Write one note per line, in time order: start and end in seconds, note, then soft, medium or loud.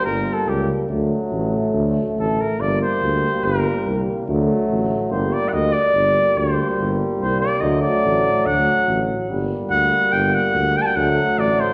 0.00 0.86 G3 medium
0.00 0.90 A#3 medium
0.05 0.29 G1 medium
0.05 0.35 A#4 loud
0.34 0.50 A4 medium
0.47 0.70 C#2 medium
0.47 0.69 G4 medium
0.89 1.13 D2 medium
0.89 2.38 F#3 medium
0.89 2.59 A3 medium
1.31 1.55 A1 medium
1.74 1.97 D2 medium
2.17 2.40 A1 medium
2.17 2.42 A4 medium
2.41 2.62 A#4 medium
2.58 2.82 G1 medium
2.58 4.24 G3 medium
2.58 4.27 A#3 medium
2.58 2.81 D5 loud
2.82 3.46 C5 loud
3.02 3.25 D2 medium
3.44 3.67 G1 medium
3.44 4.07 A#4 medium
3.86 4.09 C2 medium
4.27 4.51 D2 loud
4.27 5.13 F#3 medium
4.27 5.12 A3 medium
4.69 4.92 A1 medium
5.10 5.34 G1 medium
5.10 5.79 G3 medium
5.10 5.78 A#3 medium
5.10 5.35 C5 medium
5.33 5.50 D5 loud
5.49 5.55 F#5 medium
5.53 5.76 D2 medium
5.53 5.74 D#5 loud
5.73 6.39 D5 loud
5.94 6.17 G1 medium
5.94 7.63 G3 medium
5.94 7.63 A#3 medium
6.37 6.60 D2 medium
6.37 7.00 C5 medium
6.78 7.01 G1 medium
7.20 7.44 C2 medium
7.20 7.40 C5 medium
7.41 7.62 D5 medium
7.61 7.85 D2 medium
7.61 9.31 F#3 medium
7.61 9.13 A3 medium
7.61 7.82 D#5 medium
7.82 8.48 D5 loud
8.04 8.27 A1 medium
8.46 8.69 D2 medium
8.46 9.09 F#5 loud
8.88 9.11 A1 medium
9.29 9.52 G1 medium
9.29 10.96 G3 medium
9.29 10.93 A#3 medium
9.69 9.93 D2 medium
9.69 10.14 F#5 loud
10.12 10.35 G1 loud
10.12 10.36 G5 loud
10.34 10.78 F#5 loud
10.54 10.77 D2 medium
10.77 10.83 G5 loud
10.82 10.88 A5 loud
10.86 10.97 G5 medium
10.96 11.19 D2 loud
10.96 11.73 F#3 medium
10.96 11.73 A3 medium
10.96 11.40 F#5 loud
11.38 11.61 A1 medium
11.38 11.62 D5 loud
11.60 11.73 C5 loud